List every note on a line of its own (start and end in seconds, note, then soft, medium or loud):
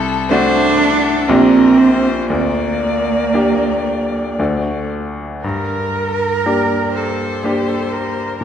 0.00 0.28 C2 medium
0.00 0.31 A4 medium
0.29 1.24 A3 medium
0.29 1.30 D4 loud
0.29 1.24 D4 medium
0.29 1.24 F#4 medium
0.29 0.80 C5 medium
0.78 1.29 A4 medium
1.28 2.27 A#1 medium
1.28 2.26 A#3 medium
1.28 2.31 C4 loud
1.28 2.27 D4 medium
1.28 2.27 G4 medium
1.28 1.79 A#4 medium
1.77 2.29 C5 medium
2.29 3.31 D2 medium
2.29 4.38 A#3 medium
2.29 4.88 D5 medium
3.34 4.34 A#3 soft
3.34 4.34 D4 soft
3.34 4.35 G4 medium
4.39 5.41 D2 medium
4.39 5.40 A3 soft
4.39 5.40 D4 soft
4.39 5.40 F#4 soft
5.44 6.42 G2 medium
5.44 6.47 A#4 medium
5.44 6.98 A#4 medium
6.46 7.40 A#3 soft
6.46 7.40 D4 soft
6.46 7.40 G4 soft
6.46 6.93 D5 medium
6.94 7.46 A4 medium
6.94 8.37 C5 medium
7.44 8.37 A#3 soft
7.44 8.37 D4 soft
7.44 7.69 G4 medium
7.44 8.38 G4 soft
7.68 7.94 A4 medium
7.92 8.44 A#4 medium
8.40 8.44 A#2 soft
8.40 8.44 A#4 medium